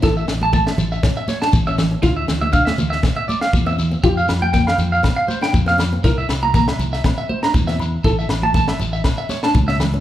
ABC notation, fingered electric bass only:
X:1
M:4/4
L:1/8
Q:"Swing 16ths" 1/4=120
K:Aphr
V:1 name="Fingered electric bass" clef=bass
A,,, A,,,2 A,,, z2 A,,,2 | D,, D,,2 D,, z2 E,,2 | F,, F,,2 F,, z2 F,,2 | C,, C,,2 C,, z2 E,,2 |
A,,, A,,,2 A,,, z2 ^C,,2 |]